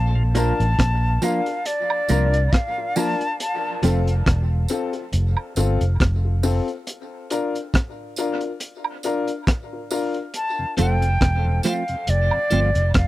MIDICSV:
0, 0, Header, 1, 8, 480
1, 0, Start_track
1, 0, Key_signature, -1, "major"
1, 0, Tempo, 868307
1, 1876, Time_signature, 4, 2, 24, 8
1, 7228, End_track
2, 0, Start_track
2, 0, Title_t, "Flute"
2, 0, Program_c, 0, 73
2, 0, Note_on_c, 0, 81, 90
2, 61, Note_off_c, 0, 81, 0
2, 204, Note_on_c, 0, 81, 97
2, 680, Note_on_c, 0, 77, 83
2, 689, Note_off_c, 0, 81, 0
2, 919, Note_on_c, 0, 74, 92
2, 928, Note_off_c, 0, 77, 0
2, 1397, Note_on_c, 0, 77, 90
2, 1405, Note_off_c, 0, 74, 0
2, 1638, Note_on_c, 0, 81, 96
2, 1647, Note_off_c, 0, 77, 0
2, 1877, Note_off_c, 0, 81, 0
2, 1884, Note_on_c, 0, 81, 93
2, 2104, Note_off_c, 0, 81, 0
2, 5727, Note_on_c, 0, 81, 99
2, 5945, Note_off_c, 0, 81, 0
2, 5973, Note_on_c, 0, 79, 93
2, 6422, Note_off_c, 0, 79, 0
2, 6445, Note_on_c, 0, 77, 84
2, 6687, Note_on_c, 0, 74, 98
2, 6695, Note_off_c, 0, 77, 0
2, 7161, Note_off_c, 0, 74, 0
2, 7167, Note_on_c, 0, 77, 88
2, 7228, Note_off_c, 0, 77, 0
2, 7228, End_track
3, 0, Start_track
3, 0, Title_t, "Upright piano"
3, 0, Program_c, 1, 0
3, 197, Note_on_c, 1, 62, 82
3, 201, Note_on_c, 1, 65, 84
3, 204, Note_on_c, 1, 70, 107
3, 326, Note_off_c, 1, 62, 0
3, 328, Note_off_c, 1, 65, 0
3, 330, Note_off_c, 1, 70, 0
3, 679, Note_on_c, 1, 62, 82
3, 682, Note_on_c, 1, 65, 80
3, 685, Note_on_c, 1, 70, 89
3, 808, Note_off_c, 1, 62, 0
3, 809, Note_off_c, 1, 65, 0
3, 811, Note_off_c, 1, 70, 0
3, 818, Note_on_c, 1, 65, 23
3, 820, Note_on_c, 1, 70, 28
3, 856, Note_off_c, 1, 65, 0
3, 857, Note_off_c, 1, 70, 0
3, 1160, Note_on_c, 1, 62, 95
3, 1164, Note_on_c, 1, 65, 82
3, 1167, Note_on_c, 1, 70, 103
3, 1288, Note_off_c, 1, 62, 0
3, 1290, Note_off_c, 1, 65, 0
3, 1292, Note_off_c, 1, 70, 0
3, 1537, Note_on_c, 1, 65, 25
3, 1537, Note_on_c, 1, 70, 26
3, 1575, Note_off_c, 1, 65, 0
3, 1576, Note_off_c, 1, 70, 0
3, 1639, Note_on_c, 1, 62, 91
3, 1642, Note_on_c, 1, 65, 83
3, 1644, Note_on_c, 1, 70, 100
3, 1768, Note_off_c, 1, 62, 0
3, 1769, Note_off_c, 1, 65, 0
3, 1771, Note_off_c, 1, 70, 0
3, 2118, Note_on_c, 1, 60, 94
3, 2122, Note_on_c, 1, 65, 83
3, 2127, Note_on_c, 1, 69, 107
3, 2248, Note_off_c, 1, 60, 0
3, 2250, Note_off_c, 1, 65, 0
3, 2252, Note_off_c, 1, 69, 0
3, 2597, Note_on_c, 1, 60, 81
3, 2600, Note_on_c, 1, 65, 74
3, 2603, Note_on_c, 1, 69, 89
3, 2722, Note_off_c, 1, 69, 0
3, 2723, Note_off_c, 1, 65, 0
3, 2727, Note_off_c, 1, 60, 0
3, 2730, Note_on_c, 1, 69, 27
3, 2731, Note_on_c, 1, 65, 25
3, 2772, Note_off_c, 1, 69, 0
3, 2773, Note_off_c, 1, 65, 0
3, 3077, Note_on_c, 1, 60, 94
3, 3081, Note_on_c, 1, 65, 92
3, 3082, Note_on_c, 1, 69, 97
3, 3207, Note_off_c, 1, 60, 0
3, 3209, Note_off_c, 1, 65, 0
3, 3210, Note_off_c, 1, 69, 0
3, 3453, Note_on_c, 1, 69, 26
3, 3454, Note_on_c, 1, 65, 23
3, 3494, Note_off_c, 1, 65, 0
3, 3494, Note_off_c, 1, 69, 0
3, 3555, Note_on_c, 1, 60, 98
3, 3557, Note_on_c, 1, 65, 85
3, 3561, Note_on_c, 1, 69, 99
3, 3687, Note_off_c, 1, 60, 0
3, 3687, Note_off_c, 1, 65, 0
3, 3689, Note_off_c, 1, 69, 0
3, 4038, Note_on_c, 1, 62, 87
3, 4041, Note_on_c, 1, 65, 80
3, 4045, Note_on_c, 1, 70, 93
3, 4168, Note_off_c, 1, 62, 0
3, 4169, Note_off_c, 1, 65, 0
3, 4171, Note_off_c, 1, 70, 0
3, 4523, Note_on_c, 1, 62, 84
3, 4524, Note_on_c, 1, 65, 85
3, 4528, Note_on_c, 1, 70, 87
3, 4650, Note_off_c, 1, 62, 0
3, 4650, Note_off_c, 1, 65, 0
3, 4650, Note_off_c, 1, 70, 0
3, 4658, Note_on_c, 1, 65, 23
3, 4658, Note_on_c, 1, 70, 28
3, 4696, Note_off_c, 1, 65, 0
3, 4696, Note_off_c, 1, 70, 0
3, 4999, Note_on_c, 1, 62, 96
3, 5002, Note_on_c, 1, 65, 85
3, 5007, Note_on_c, 1, 70, 100
3, 5128, Note_off_c, 1, 62, 0
3, 5130, Note_off_c, 1, 65, 0
3, 5132, Note_off_c, 1, 70, 0
3, 5377, Note_on_c, 1, 70, 26
3, 5378, Note_on_c, 1, 65, 24
3, 5416, Note_off_c, 1, 65, 0
3, 5416, Note_off_c, 1, 70, 0
3, 5476, Note_on_c, 1, 62, 83
3, 5480, Note_on_c, 1, 65, 89
3, 5481, Note_on_c, 1, 70, 93
3, 5606, Note_off_c, 1, 62, 0
3, 5609, Note_off_c, 1, 65, 0
3, 5609, Note_off_c, 1, 70, 0
3, 5954, Note_on_c, 1, 60, 88
3, 5958, Note_on_c, 1, 65, 81
3, 5962, Note_on_c, 1, 69, 107
3, 6086, Note_off_c, 1, 60, 0
3, 6087, Note_off_c, 1, 65, 0
3, 6090, Note_off_c, 1, 69, 0
3, 7228, End_track
4, 0, Start_track
4, 0, Title_t, "Clean electric guitar"
4, 0, Program_c, 2, 27
4, 192, Note_on_c, 2, 53, 82
4, 194, Note_on_c, 2, 58, 81
4, 198, Note_on_c, 2, 62, 98
4, 201, Note_on_c, 2, 65, 91
4, 290, Note_off_c, 2, 53, 0
4, 291, Note_off_c, 2, 58, 0
4, 293, Note_off_c, 2, 62, 0
4, 295, Note_off_c, 2, 65, 0
4, 673, Note_on_c, 2, 53, 86
4, 679, Note_on_c, 2, 58, 81
4, 679, Note_on_c, 2, 62, 78
4, 683, Note_on_c, 2, 65, 83
4, 771, Note_off_c, 2, 53, 0
4, 774, Note_off_c, 2, 58, 0
4, 774, Note_off_c, 2, 62, 0
4, 776, Note_off_c, 2, 65, 0
4, 1156, Note_on_c, 2, 53, 71
4, 1158, Note_on_c, 2, 58, 83
4, 1162, Note_on_c, 2, 62, 80
4, 1165, Note_on_c, 2, 65, 84
4, 1253, Note_off_c, 2, 53, 0
4, 1254, Note_off_c, 2, 58, 0
4, 1256, Note_off_c, 2, 62, 0
4, 1257, Note_off_c, 2, 65, 0
4, 1637, Note_on_c, 2, 53, 77
4, 1640, Note_on_c, 2, 58, 86
4, 1641, Note_on_c, 2, 62, 83
4, 1646, Note_on_c, 2, 65, 84
4, 1733, Note_off_c, 2, 53, 0
4, 1735, Note_off_c, 2, 58, 0
4, 1735, Note_off_c, 2, 62, 0
4, 1738, Note_off_c, 2, 65, 0
4, 2115, Note_on_c, 2, 53, 75
4, 2120, Note_on_c, 2, 57, 78
4, 2123, Note_on_c, 2, 60, 83
4, 2126, Note_on_c, 2, 65, 90
4, 2213, Note_off_c, 2, 53, 0
4, 2215, Note_off_c, 2, 57, 0
4, 2217, Note_off_c, 2, 60, 0
4, 2218, Note_off_c, 2, 65, 0
4, 5959, Note_on_c, 2, 53, 87
4, 5963, Note_on_c, 2, 57, 92
4, 5966, Note_on_c, 2, 60, 87
4, 5968, Note_on_c, 2, 65, 106
4, 6054, Note_off_c, 2, 53, 0
4, 6056, Note_off_c, 2, 57, 0
4, 6058, Note_off_c, 2, 60, 0
4, 6059, Note_off_c, 2, 65, 0
4, 6438, Note_on_c, 2, 53, 81
4, 6442, Note_on_c, 2, 57, 93
4, 6444, Note_on_c, 2, 60, 91
4, 6448, Note_on_c, 2, 65, 95
4, 6534, Note_off_c, 2, 53, 0
4, 6536, Note_off_c, 2, 57, 0
4, 6537, Note_off_c, 2, 60, 0
4, 6539, Note_off_c, 2, 65, 0
4, 6919, Note_on_c, 2, 53, 85
4, 6922, Note_on_c, 2, 57, 89
4, 6926, Note_on_c, 2, 60, 94
4, 6928, Note_on_c, 2, 65, 87
4, 7014, Note_off_c, 2, 53, 0
4, 7016, Note_off_c, 2, 57, 0
4, 7018, Note_off_c, 2, 60, 0
4, 7019, Note_off_c, 2, 65, 0
4, 7228, End_track
5, 0, Start_track
5, 0, Title_t, "Tonewheel organ"
5, 0, Program_c, 3, 16
5, 83, Note_on_c, 3, 46, 58
5, 85, Note_on_c, 3, 53, 46
5, 126, Note_off_c, 3, 46, 0
5, 127, Note_off_c, 3, 53, 0
5, 5853, Note_on_c, 3, 41, 51
5, 5853, Note_on_c, 3, 48, 54
5, 5892, Note_off_c, 3, 41, 0
5, 5892, Note_off_c, 3, 48, 0
5, 5953, Note_on_c, 3, 57, 60
5, 5955, Note_on_c, 3, 60, 59
5, 5959, Note_on_c, 3, 65, 63
5, 6005, Note_off_c, 3, 57, 0
5, 6006, Note_off_c, 3, 60, 0
5, 6008, Note_off_c, 3, 65, 0
5, 6089, Note_on_c, 3, 48, 56
5, 6090, Note_on_c, 3, 41, 58
5, 6130, Note_off_c, 3, 41, 0
5, 6130, Note_off_c, 3, 48, 0
5, 6328, Note_on_c, 3, 41, 59
5, 6329, Note_on_c, 3, 48, 57
5, 6369, Note_off_c, 3, 41, 0
5, 6370, Note_off_c, 3, 48, 0
5, 6432, Note_on_c, 3, 57, 67
5, 6436, Note_on_c, 3, 60, 62
5, 6437, Note_on_c, 3, 65, 80
5, 6485, Note_off_c, 3, 57, 0
5, 6486, Note_off_c, 3, 60, 0
5, 6487, Note_off_c, 3, 65, 0
5, 6574, Note_on_c, 3, 41, 60
5, 6574, Note_on_c, 3, 48, 57
5, 6612, Note_off_c, 3, 41, 0
5, 6612, Note_off_c, 3, 48, 0
5, 6810, Note_on_c, 3, 48, 53
5, 6811, Note_on_c, 3, 41, 58
5, 6850, Note_off_c, 3, 48, 0
5, 6851, Note_off_c, 3, 41, 0
5, 6912, Note_on_c, 3, 57, 76
5, 6912, Note_on_c, 3, 60, 64
5, 6913, Note_on_c, 3, 65, 89
5, 6964, Note_off_c, 3, 60, 0
5, 6965, Note_off_c, 3, 57, 0
5, 6965, Note_off_c, 3, 65, 0
5, 7044, Note_on_c, 3, 48, 50
5, 7047, Note_on_c, 3, 41, 58
5, 7087, Note_off_c, 3, 48, 0
5, 7088, Note_off_c, 3, 41, 0
5, 7228, End_track
6, 0, Start_track
6, 0, Title_t, "Fingered electric bass"
6, 0, Program_c, 4, 33
6, 0, Note_on_c, 4, 34, 94
6, 281, Note_off_c, 4, 34, 0
6, 331, Note_on_c, 4, 33, 80
6, 423, Note_off_c, 4, 33, 0
6, 437, Note_on_c, 4, 34, 89
6, 645, Note_off_c, 4, 34, 0
6, 1161, Note_on_c, 4, 36, 82
6, 1368, Note_off_c, 4, 36, 0
6, 2122, Note_on_c, 4, 29, 92
6, 2328, Note_off_c, 4, 29, 0
6, 2360, Note_on_c, 4, 28, 91
6, 2567, Note_off_c, 4, 28, 0
6, 2839, Note_on_c, 4, 29, 110
6, 2954, Note_off_c, 4, 29, 0
6, 3080, Note_on_c, 4, 31, 91
6, 3194, Note_off_c, 4, 31, 0
6, 3212, Note_on_c, 4, 29, 85
6, 3304, Note_off_c, 4, 29, 0
6, 3320, Note_on_c, 4, 29, 93
6, 3643, Note_off_c, 4, 29, 0
6, 5964, Note_on_c, 4, 29, 98
6, 6169, Note_off_c, 4, 29, 0
6, 6199, Note_on_c, 4, 28, 93
6, 6406, Note_off_c, 4, 28, 0
6, 6681, Note_on_c, 4, 29, 102
6, 6794, Note_off_c, 4, 29, 0
6, 6922, Note_on_c, 4, 31, 85
6, 7035, Note_off_c, 4, 31, 0
6, 7052, Note_on_c, 4, 29, 80
6, 7143, Note_off_c, 4, 29, 0
6, 7160, Note_on_c, 4, 29, 89
6, 7228, Note_off_c, 4, 29, 0
6, 7228, End_track
7, 0, Start_track
7, 0, Title_t, "Muted clean electric guitar strokes"
7, 1770, Note_on_c, 9, 29, 46
7, 1825, Note_off_c, 9, 29, 0
7, 7228, End_track
8, 0, Start_track
8, 0, Title_t, "Drums"
8, 193, Note_on_c, 9, 42, 69
8, 202, Note_on_c, 9, 54, 46
8, 248, Note_off_c, 9, 42, 0
8, 257, Note_off_c, 9, 54, 0
8, 332, Note_on_c, 9, 42, 43
8, 387, Note_off_c, 9, 42, 0
8, 435, Note_on_c, 9, 36, 98
8, 437, Note_on_c, 9, 42, 86
8, 441, Note_on_c, 9, 37, 102
8, 490, Note_off_c, 9, 36, 0
8, 493, Note_off_c, 9, 42, 0
8, 496, Note_off_c, 9, 37, 0
8, 674, Note_on_c, 9, 54, 57
8, 676, Note_on_c, 9, 42, 86
8, 729, Note_off_c, 9, 54, 0
8, 731, Note_off_c, 9, 42, 0
8, 808, Note_on_c, 9, 42, 50
8, 863, Note_off_c, 9, 42, 0
8, 915, Note_on_c, 9, 42, 86
8, 970, Note_off_c, 9, 42, 0
8, 1051, Note_on_c, 9, 76, 80
8, 1106, Note_off_c, 9, 76, 0
8, 1153, Note_on_c, 9, 54, 59
8, 1155, Note_on_c, 9, 42, 53
8, 1208, Note_off_c, 9, 54, 0
8, 1210, Note_off_c, 9, 42, 0
8, 1291, Note_on_c, 9, 42, 52
8, 1346, Note_off_c, 9, 42, 0
8, 1397, Note_on_c, 9, 36, 105
8, 1400, Note_on_c, 9, 42, 77
8, 1406, Note_on_c, 9, 37, 94
8, 1452, Note_off_c, 9, 36, 0
8, 1455, Note_off_c, 9, 42, 0
8, 1461, Note_off_c, 9, 37, 0
8, 1635, Note_on_c, 9, 54, 71
8, 1638, Note_on_c, 9, 46, 53
8, 1691, Note_off_c, 9, 54, 0
8, 1694, Note_off_c, 9, 46, 0
8, 1773, Note_on_c, 9, 42, 47
8, 1829, Note_off_c, 9, 42, 0
8, 1880, Note_on_c, 9, 42, 98
8, 1935, Note_off_c, 9, 42, 0
8, 2115, Note_on_c, 9, 42, 74
8, 2122, Note_on_c, 9, 54, 48
8, 2171, Note_off_c, 9, 42, 0
8, 2178, Note_off_c, 9, 54, 0
8, 2251, Note_on_c, 9, 42, 46
8, 2307, Note_off_c, 9, 42, 0
8, 2357, Note_on_c, 9, 36, 110
8, 2360, Note_on_c, 9, 42, 80
8, 2363, Note_on_c, 9, 37, 103
8, 2412, Note_off_c, 9, 36, 0
8, 2415, Note_off_c, 9, 42, 0
8, 2419, Note_off_c, 9, 37, 0
8, 2590, Note_on_c, 9, 54, 65
8, 2596, Note_on_c, 9, 42, 77
8, 2645, Note_off_c, 9, 54, 0
8, 2652, Note_off_c, 9, 42, 0
8, 2726, Note_on_c, 9, 42, 49
8, 2781, Note_off_c, 9, 42, 0
8, 2834, Note_on_c, 9, 42, 88
8, 2889, Note_off_c, 9, 42, 0
8, 2967, Note_on_c, 9, 76, 73
8, 3022, Note_off_c, 9, 76, 0
8, 3074, Note_on_c, 9, 54, 57
8, 3076, Note_on_c, 9, 42, 54
8, 3129, Note_off_c, 9, 54, 0
8, 3132, Note_off_c, 9, 42, 0
8, 3211, Note_on_c, 9, 42, 50
8, 3266, Note_off_c, 9, 42, 0
8, 3318, Note_on_c, 9, 36, 110
8, 3321, Note_on_c, 9, 42, 87
8, 3326, Note_on_c, 9, 37, 110
8, 3373, Note_off_c, 9, 36, 0
8, 3376, Note_off_c, 9, 42, 0
8, 3382, Note_off_c, 9, 37, 0
8, 3556, Note_on_c, 9, 54, 66
8, 3562, Note_on_c, 9, 46, 51
8, 3611, Note_off_c, 9, 54, 0
8, 3618, Note_off_c, 9, 46, 0
8, 3692, Note_on_c, 9, 42, 44
8, 3748, Note_off_c, 9, 42, 0
8, 3797, Note_on_c, 9, 42, 97
8, 3852, Note_off_c, 9, 42, 0
8, 4037, Note_on_c, 9, 42, 73
8, 4046, Note_on_c, 9, 54, 49
8, 4093, Note_off_c, 9, 42, 0
8, 4101, Note_off_c, 9, 54, 0
8, 4175, Note_on_c, 9, 42, 46
8, 4231, Note_off_c, 9, 42, 0
8, 4278, Note_on_c, 9, 36, 98
8, 4282, Note_on_c, 9, 42, 81
8, 4286, Note_on_c, 9, 37, 104
8, 4333, Note_off_c, 9, 36, 0
8, 4337, Note_off_c, 9, 42, 0
8, 4341, Note_off_c, 9, 37, 0
8, 4513, Note_on_c, 9, 54, 60
8, 4517, Note_on_c, 9, 42, 76
8, 4568, Note_off_c, 9, 54, 0
8, 4573, Note_off_c, 9, 42, 0
8, 4647, Note_on_c, 9, 42, 45
8, 4702, Note_off_c, 9, 42, 0
8, 4755, Note_on_c, 9, 42, 90
8, 4811, Note_off_c, 9, 42, 0
8, 4889, Note_on_c, 9, 76, 75
8, 4945, Note_off_c, 9, 76, 0
8, 4993, Note_on_c, 9, 54, 53
8, 4994, Note_on_c, 9, 42, 48
8, 5048, Note_off_c, 9, 54, 0
8, 5050, Note_off_c, 9, 42, 0
8, 5127, Note_on_c, 9, 42, 47
8, 5183, Note_off_c, 9, 42, 0
8, 5236, Note_on_c, 9, 36, 106
8, 5237, Note_on_c, 9, 42, 81
8, 5242, Note_on_c, 9, 37, 103
8, 5291, Note_off_c, 9, 36, 0
8, 5292, Note_off_c, 9, 42, 0
8, 5298, Note_off_c, 9, 37, 0
8, 5476, Note_on_c, 9, 54, 65
8, 5477, Note_on_c, 9, 46, 51
8, 5531, Note_off_c, 9, 54, 0
8, 5532, Note_off_c, 9, 46, 0
8, 5607, Note_on_c, 9, 42, 48
8, 5662, Note_off_c, 9, 42, 0
8, 5715, Note_on_c, 9, 42, 87
8, 5770, Note_off_c, 9, 42, 0
8, 5956, Note_on_c, 9, 42, 76
8, 5963, Note_on_c, 9, 54, 46
8, 6011, Note_off_c, 9, 42, 0
8, 6018, Note_off_c, 9, 54, 0
8, 6092, Note_on_c, 9, 42, 48
8, 6147, Note_off_c, 9, 42, 0
8, 6197, Note_on_c, 9, 36, 107
8, 6199, Note_on_c, 9, 42, 75
8, 6203, Note_on_c, 9, 37, 107
8, 6252, Note_off_c, 9, 36, 0
8, 6255, Note_off_c, 9, 42, 0
8, 6258, Note_off_c, 9, 37, 0
8, 6430, Note_on_c, 9, 54, 58
8, 6435, Note_on_c, 9, 42, 71
8, 6441, Note_on_c, 9, 37, 62
8, 6486, Note_off_c, 9, 54, 0
8, 6490, Note_off_c, 9, 42, 0
8, 6497, Note_off_c, 9, 37, 0
8, 6566, Note_on_c, 9, 42, 50
8, 6622, Note_off_c, 9, 42, 0
8, 6674, Note_on_c, 9, 42, 85
8, 6729, Note_off_c, 9, 42, 0
8, 6806, Note_on_c, 9, 76, 74
8, 6861, Note_off_c, 9, 76, 0
8, 6913, Note_on_c, 9, 54, 55
8, 6915, Note_on_c, 9, 42, 53
8, 6968, Note_off_c, 9, 54, 0
8, 6970, Note_off_c, 9, 42, 0
8, 7048, Note_on_c, 9, 42, 50
8, 7103, Note_off_c, 9, 42, 0
8, 7154, Note_on_c, 9, 42, 83
8, 7156, Note_on_c, 9, 36, 101
8, 7160, Note_on_c, 9, 37, 110
8, 7210, Note_off_c, 9, 42, 0
8, 7211, Note_off_c, 9, 36, 0
8, 7215, Note_off_c, 9, 37, 0
8, 7228, End_track
0, 0, End_of_file